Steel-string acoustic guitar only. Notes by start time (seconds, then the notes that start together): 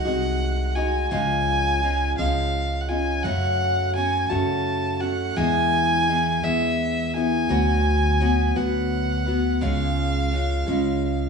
0.05 C3 D#3 G#3 D#4 F#4
0.76 G#3 D#4 F#4
1.11 C#3 F3 G#3 C#4 F4
1.82 F3 G#3 C#4 F4
2.18 C#3 F3 G#3 C#4 F4
2.88 G#3 C#4 F4
3.24 F#2 C#3 F#3 A3 C#4 F#4
3.95 F#3 A3 C#4 F#4
4.30 F#2 C#3 F#3 A3 C#4 F#4
5.00 F#3 A3 C#4 F#4
5.36 E3 G#3 B3 E4 G#4
6.08 G#3 B3 E4 G#4
6.43 E3 G#3 B3 E4 G#4
7.15 B3 E4 G#4
7.49 D3 F#3 B3 F#4 B4
8.20 F#3 B3 F#4 B4
8.56 D3 F#3 B3 F#4 B4
9.26 B3 F#4 B4
9.61 C#3 G#3 C#4 F4 G#4
10.31 G#3 C#4 F4 G#4
10.67 C#3 G#3 C#4 F4 G#4